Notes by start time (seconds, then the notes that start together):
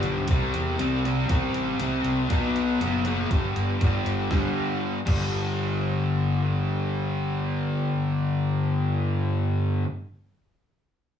Already playing: G2 D3 G3
0.03 B1, closed hi-hat
0.28 C2 C3 G3 C4, kick, closed hi-hat
0.54 E2, closed hi-hat
0.79 C2 C3 G3 C4, closed hi-hat
1.05 G3 C4, closed hi-hat
1.28 A1 C3 G3 C4, kick, closed hi-hat
1.54 closed hi-hat
1.79 C2 C3 G3 C4, closed hi-hat
2.04 C2, closed hi-hat
2.29 B1 B2 F#3 B3, kick, closed hi-hat
2.56 closed hi-hat
2.80 F#1 B2 F#3 B3, closed hi-hat
3.05 F#3 B3, closed hi-hat
3.31 G1 G2 D3 G3, kick, closed hi-hat
3.56 G1, closed hi-hat
3.81 G1 G2 D3 G3, kick, closed hi-hat
4.05 G1, closed hi-hat
4.31 G1 G2 D3, kick, snare
4.35 G3
5.05 G1 G2 D3, kick, crash
5.09 G3